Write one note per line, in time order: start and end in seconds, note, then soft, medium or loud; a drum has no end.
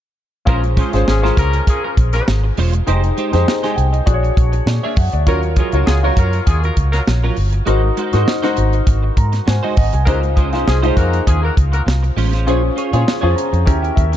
0.45 0.81 A#1 medium
0.45 0.60 F3 medium
0.45 0.68 G#3 medium
0.45 0.85 C#4 medium
0.45 0.64 C#4 medium
0.45 0.60 C#4 medium
0.45 0.85 F4 medium
0.45 0.63 F4 medium
0.45 0.85 G#4 medium
0.45 0.60 A#4 loud
0.45 0.86 C5 medium
0.45 0.62 C5 medium
0.45 kick medium
0.45 closed hi-hat medium
0.63 muted clean electric guitar stroke soft
0.63 closed hi-hat soft
0.77 0.91 F3 medium
0.77 0.94 G#3 medium
0.77 0.93 C#4 medium
0.77 0.90 C#4 medium
0.77 0.93 F4 medium
0.77 0.90 G#4 medium
0.77 0.92 C5 medium
0.77 kick medium
0.77 closed hi-hat medium
0.92 1.04 G#1 medium
0.92 1.06 G#3 medium
0.92 1.18 C#4 medium
0.92 1.07 C#4 medium
0.92 1.18 F4 medium
0.92 1.07 F4 medium
0.92 1.18 G#4 medium
0.92 1.07 C5 medium
0.92 1.19 C5 medium
0.92 snare soft
0.92 closed hi-hat soft
1.07 1.29 G#1 medium
1.07 1.20 F3 medium
1.07 1.20 C#4 medium
1.07 1.20 G#4 medium
1.07 muted clean electric guitar stroke soft
1.07 snare loud
1.22 1.36 G#3 medium
1.22 2.23 C#4 medium
1.22 1.37 C#4 medium
1.22 2.24 F4 medium
1.22 1.37 F4 medium
1.22 2.24 G#4 medium
1.22 2.24 A#4 medium
1.22 1.37 C5 medium
1.22 snare soft
1.37 1.59 C#2 medium
1.37 1.61 F3 medium
1.37 1.61 C#4 medium
1.37 1.61 A#4 loud
1.37 muted clean electric guitar stroke soft
1.37 kick medium
1.37 closed hi-hat medium
1.53 muted clean electric guitar stroke soft
1.53 closed hi-hat soft
1.67 1.80 F3 medium
1.67 1.81 C#4 medium
1.67 1.81 G#4 loud
1.67 muted clean electric guitar stroke soft
1.67 kick medium
1.67 closed hi-hat medium
1.83 1.94 F3 medium
1.83 1.94 C#4 medium
1.83 1.94 A#4 medium
1.83 muted clean electric guitar stroke soft
1.97 2.19 A#1 medium
1.97 kick medium
1.97 closed hi-hat medium
2.13 2.24 F3 medium
2.13 2.24 C#4 medium
2.13 2.24 A#4 medium
2.13 muted clean electric guitar stroke soft
2.13 snare soft
2.13 closed hi-hat soft
2.28 2.50 G#1 medium
2.28 snare loud
2.44 muted clean electric guitar stroke soft
2.57 2.80 E1 medium
2.57 2.78 G#3 medium
2.57 2.74 C#4 medium
2.57 2.74 F4 medium
2.57 2.73 C5 medium
2.57 open hi-hat medium
2.73 muted clean electric guitar stroke soft
2.73 closed hi-hat medium
2.87 3.10 F1 medium
2.87 3.08 G#3 medium
2.87 3.26 D#4 medium
2.87 3.03 D#4 medium
2.87 3.26 G4 medium
2.87 3.03 G4 medium
2.87 3.26 G#4 medium
2.87 3.26 C5 medium
2.87 3.02 C5 medium
2.87 closed hi-hat medium
3.04 muted clean electric guitar stroke soft
3.04 closed hi-hat soft
3.17 3.34 G#3 medium
3.17 3.34 D#4 medium
3.17 3.33 G4 medium
3.17 3.33 C5 medium
3.17 closed hi-hat medium
3.32 3.44 F2 medium
3.32 3.46 G#3 soft
3.32 3.58 D#4 medium
3.32 3.47 D#4 medium
3.32 3.58 G4 medium
3.32 3.48 G4 medium
3.32 3.58 G#4 medium
3.32 3.58 C5 medium
3.32 3.48 C5 medium
3.32 snare soft
3.32 closed hi-hat soft
3.46 3.62 A#5 medium
3.46 snare loud
3.62 3.75 G#3 medium
3.62 3.76 D#4 medium
3.62 3.76 G4 medium
3.62 3.77 C5 medium
3.62 3.76 G#5 medium
3.62 snare soft
3.62 closed hi-hat soft
3.76 3.99 C2 medium
3.76 3.92 G5 medium
3.76 muted clean electric guitar stroke soft
3.76 closed hi-hat medium
3.92 4.21 D#5 medium
3.92 muted clean electric guitar stroke medium
3.92 closed hi-hat soft
4.06 4.29 A#1 loud
4.06 5.09 D4 medium
4.06 5.09 F#4 medium
4.06 5.10 G#4 medium
4.06 4.14 C5 medium
4.06 muted clean electric guitar stroke soft
4.06 kick medium
4.06 closed hi-hat medium
4.14 4.40 C#5 medium
4.23 muted clean electric guitar stroke soft
4.23 closed hi-hat soft
4.37 4.59 A#1 medium
4.37 kick medium
4.37 closed hi-hat medium
4.52 muted clean electric guitar stroke soft
4.52 closed hi-hat soft
4.66 4.78 A#2 medium
4.66 4.83 D5 medium
4.66 muted clean electric guitar stroke soft
4.66 snare loud
4.83 4.96 A#3 medium
4.83 4.97 D4 medium
4.83 4.97 G#4 medium
4.83 4.98 C#5 medium
4.83 4.96 E5 medium
4.96 5.09 F#2 medium
4.96 5.12 F#5 medium
4.96 muted clean electric guitar stroke soft
4.96 kick loud
4.96 open hi-hat medium
5.12 5.27 D2 medium
5.12 5.42 D5 medium
5.12 muted clean electric guitar stroke soft
5.12 closed hi-hat soft
5.26 5.61 D#2 loud
5.26 5.40 F#3 medium
5.26 5.48 F#3 medium
5.26 5.44 C#4 medium
5.26 5.65 F4 medium
5.26 5.40 F4 medium
5.26 5.44 F4 medium
5.26 5.66 F#4 medium
5.26 5.40 A#4 loud
5.26 5.66 A#4 medium
5.26 5.43 A#4 medium
5.26 5.66 C#5 medium
5.26 kick medium
5.26 closed hi-hat medium
5.43 muted clean electric guitar stroke soft
5.43 closed hi-hat soft
5.56 5.74 F#3 soft
5.56 5.70 G#3 medium
5.56 5.74 C#4 medium
5.56 5.70 F4 medium
5.56 5.73 F4 medium
5.56 5.70 G#4 medium
5.56 5.73 A#4 medium
5.56 kick medium
5.56 closed hi-hat medium
5.72 5.83 C#2 medium
5.72 5.87 F#3 medium
5.72 5.87 C#4 medium
5.72 5.98 F4 medium
5.72 5.88 F4 medium
5.72 5.98 F#4 medium
5.72 5.98 A#4 medium
5.72 5.88 A#4 medium
5.72 5.99 C#5 medium
5.72 closed hi-hat soft
5.86 6.09 C#2 medium
5.86 6.00 G#3 medium
5.86 5.99 F4 medium
5.86 6.00 G#4 medium
5.86 muted clean electric guitar stroke soft
5.86 snare loud
6.03 6.17 F#3 medium
6.03 6.17 C#4 medium
6.03 7.04 F4 medium
6.03 6.18 F4 medium
6.03 7.04 F#4 medium
6.03 7.04 A#4 medium
6.03 6.18 A#4 medium
6.03 7.05 C#5 medium
6.17 6.39 F#2 medium
6.17 6.41 F#3 medium
6.17 6.41 F4 medium
6.17 6.41 A#4 loud
6.17 muted clean electric guitar stroke soft
6.17 kick medium
6.17 closed hi-hat medium
6.33 muted clean electric guitar stroke soft
6.33 closed hi-hat soft
6.46 6.69 D#2 medium
6.46 6.60 G#3 medium
6.46 6.60 F4 loud
6.46 6.59 G#4 loud
6.46 muted clean electric guitar stroke soft
6.46 kick medium
6.46 closed hi-hat medium
6.63 6.74 F#3 medium
6.63 6.74 F4 medium
6.63 6.74 A#4 medium
6.63 muted clean electric guitar stroke soft
6.63 closed hi-hat soft
6.77 6.99 C#2 medium
6.77 kick medium
6.77 closed hi-hat medium
6.93 7.01 F#3 medium
6.93 7.01 F4 medium
6.93 7.01 A#4 medium
6.93 muted clean electric guitar stroke soft
6.93 snare soft
6.93 closed hi-hat soft
7.07 7.29 A#1 medium
7.07 muted clean electric guitar stroke soft
7.07 snare loud
7.24 7.36 F#3 medium
7.24 7.36 C#4 medium
7.24 7.37 F4 medium
7.24 7.37 A#4 medium
7.36 7.59 G1 medium
7.36 muted clean electric guitar stroke soft
7.36 open hi-hat medium
7.52 muted clean electric guitar stroke soft
7.52 closed hi-hat medium
7.66 7.89 G#1 loud
7.66 7.87 G#3 medium
7.66 8.05 D#4 medium
7.66 7.83 D#4 medium
7.66 8.06 F#4 medium
7.66 7.83 F#4 medium
7.66 8.05 A#4 medium
7.66 8.06 C5 medium
7.66 7.82 C5 medium
7.66 closed hi-hat medium
7.84 muted clean electric guitar stroke soft
7.97 8.14 G#3 medium
7.97 8.13 D#4 medium
7.97 8.13 F#4 medium
7.97 8.12 C5 medium
7.97 closed hi-hat medium
8.13 8.24 G#2 loud
8.13 8.26 G#3 soft
8.13 8.38 D#4 medium
8.13 8.26 D#4 medium
8.13 8.38 F#4 medium
8.13 8.27 F#4 medium
8.13 8.38 A#4 medium
8.13 8.27 C5 medium
8.13 8.39 C5 medium
8.13 snare soft
8.13 closed hi-hat soft
8.28 muted clean electric guitar stroke soft
8.28 snare loud
8.42 8.56 G#3 medium
8.42 9.44 D#4 medium
8.42 8.56 D#4 medium
8.42 8.56 F#4 medium
8.42 9.44 F#4 medium
8.42 9.44 A#4 medium
8.42 8.57 C5 medium
8.42 9.45 C5 medium
8.42 snare soft
8.42 closed hi-hat soft
8.57 8.80 G#1 medium
8.57 muted clean electric guitar stroke soft
8.57 closed hi-hat medium
8.73 muted clean electric guitar stroke soft
8.73 closed hi-hat soft
8.87 9.09 G#1 medium
8.87 muted clean electric guitar stroke soft
8.87 kick medium
8.87 closed hi-hat medium
9.03 muted clean electric guitar stroke soft
9.17 9.39 G#2 medium
9.17 9.45 A#5 medium
9.17 kick medium
9.17 closed hi-hat medium
9.32 muted clean electric guitar stroke soft
9.32 snare soft
9.32 closed hi-hat soft
9.46 9.59 G#2 loud
9.46 9.63 C5 medium
9.46 9.75 G#5 medium
9.46 muted clean electric guitar stroke soft
9.46 snare loud
9.63 9.75 G#3 medium
9.63 9.76 D#4 medium
9.63 9.76 F#4 medium
9.63 9.77 C5 medium
9.63 9.76 D#5 medium
9.77 9.89 G#1 medium
9.77 10.05 D#5 medium
9.77 9.93 F#5 medium
9.77 muted clean electric guitar stroke soft
9.77 kick medium
9.77 open hi-hat medium
9.93 10.07 C2 medium
9.93 10.22 G#5 medium
9.93 muted clean electric guitar stroke medium
9.93 closed hi-hat soft
10.06 10.54 C#2 loud
10.06 10.27 G#3 medium
10.06 10.19 A#3 medium
10.06 10.23 C#4 medium
10.06 10.45 D#4 medium
10.06 10.46 F4 medium
10.06 10.23 F4 medium
10.06 10.19 F#4 medium
10.06 10.46 G#4 medium
10.06 10.19 A#4 loud
10.06 10.46 C5 medium
10.06 10.22 C5 loud
10.06 kick loud
10.06 closed hi-hat medium
10.23 muted clean electric guitar stroke soft
10.23 closed hi-hat soft
10.35 10.49 F3 medium
10.35 10.54 G#3 medium
10.35 10.49 C#4 medium
10.35 10.53 C#4 medium
10.35 10.52 F4 medium
10.35 10.49 G#4 medium
10.35 10.52 C5 medium
10.35 kick medium
10.35 closed hi-hat medium
10.52 10.64 C2 medium
10.52 10.66 G#3 medium
10.52 10.66 C#4 medium
10.52 10.78 D#4 medium
10.52 10.78 F4 medium
10.52 10.66 F4 medium
10.52 10.78 G#4 medium
10.52 10.78 C5 medium
10.52 10.67 C5 medium
10.52 snare soft
10.52 closed hi-hat soft
10.66 10.90 C2 medium
10.66 10.80 F3 medium
10.66 10.80 C#4 medium
10.66 10.80 G#4 medium
10.66 muted clean electric guitar stroke soft
10.66 snare loud
10.82 10.96 G#3 medium
10.82 10.97 C#4 medium
10.82 11.84 D#4 medium
10.82 10.97 F4 medium
10.82 11.84 F4 medium
10.82 11.84 G#4 medium
10.82 10.97 C5 medium
10.82 11.85 C5 medium
10.82 closed hi-hat soft
10.97 11.19 F2 medium
10.97 11.21 A#3 medium
10.97 11.21 F#4 loud
10.97 11.21 A#4 loud
10.97 muted clean electric guitar stroke soft
10.97 kick medium
10.97 closed hi-hat medium
11.13 muted clean electric guitar stroke soft
11.13 closed hi-hat soft
11.26 11.49 D#2 medium
11.26 11.39 F3 medium
11.26 11.40 C#4 medium
11.26 11.39 G#4 loud
11.26 muted clean electric guitar stroke soft
11.26 kick medium
11.26 closed hi-hat medium
11.43 11.54 A#3 medium
11.43 11.54 F#4 medium
11.43 11.54 A#4 medium
11.43 muted clean electric guitar stroke soft
11.57 11.79 C#2 medium
11.57 kick medium
11.57 closed hi-hat medium
11.72 11.81 A#3 medium
11.72 11.81 F#4 medium
11.72 11.81 A#4 medium
11.72 muted clean electric guitar stroke soft
11.72 closed hi-hat soft
11.86 12.09 C2 medium
11.86 muted clean electric guitar stroke soft
11.86 snare loud
12.03 muted clean electric guitar stroke soft
12.03 closed hi-hat soft
12.17 12.47 A1 medium
12.17 12.34 G#3 medium
12.17 12.33 C#4 medium
12.17 12.32 F4 medium
12.17 12.32 C5 medium
12.17 open hi-hat medium
12.33 12.46 G#3 soft
12.33 12.46 C#4 soft
12.33 12.46 F4 medium
12.33 12.48 C5 medium
12.33 snare soft
12.33 closed hi-hat medium
12.46 12.69 A#1 loud
12.46 12.85 C#4 medium
12.46 12.68 C#4 medium
12.46 12.86 F4 medium
12.46 12.62 F4 medium
12.46 12.86 G#4 medium
12.46 12.62 G#4 medium
12.46 12.86 C5 medium
12.46 12.62 C#5 medium
12.46 closed hi-hat medium
12.63 muted clean electric guitar stroke soft
12.76 12.93 C#4 medium
12.76 12.92 F4 medium
12.76 12.92 G#4 medium
12.76 12.91 C#5 medium
12.76 closed hi-hat medium
12.93 13.03 A#2 loud
12.93 13.18 C#4 medium
12.93 13.04 C#4 soft
12.93 13.18 F4 medium
12.93 13.05 F4 medium
12.93 13.06 G#4 medium
12.93 13.18 G#4 medium
12.93 13.19 C5 medium
12.93 13.05 C#5 medium
12.93 closed hi-hat soft
13.06 muted clean electric guitar stroke soft
13.06 snare loud
13.21 13.33 F2 medium
13.21 13.64 C#4 medium
13.21 13.34 C#4 medium
13.21 13.35 F4 medium
13.21 13.67 F4 medium
13.21 13.35 G#4 medium
13.21 13.67 G#4 medium
13.21 13.67 C5 medium
13.21 13.35 C#5 medium
13.36 13.64 A#5 medium
13.36 muted clean electric guitar stroke soft
13.36 closed hi-hat medium
13.52 13.67 F2 medium
13.52 muted clean electric guitar stroke soft
13.52 closed hi-hat soft
13.65 13.89 D#2 loud
13.65 14.17 C#4 medium
13.65 14.17 E4 medium
13.65 14.17 G4 medium
13.65 14.17 A#4 medium
13.65 13.81 G5 medium
13.65 muted clean electric guitar stroke soft
13.65 kick medium
13.65 closed hi-hat medium
13.82 13.95 G5 medium
13.82 muted clean electric guitar stroke soft
13.82 closed hi-hat soft
13.96 14.17 D#2 medium
13.96 14.17 E5 medium
13.96 kick medium
13.96 closed hi-hat medium
14.12 muted clean electric guitar stroke soft
14.12 closed hi-hat soft